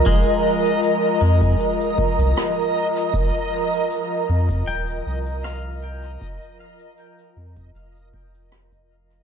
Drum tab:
SH |x--xx--xxx-xx--x|x--xx--xxx-xx--x|xx-xxx-xxx-xxx-x|
SD |------------r---|------------r---|------------r---|
BD |o------o--o-----|o------o--------|o------o--o--o--|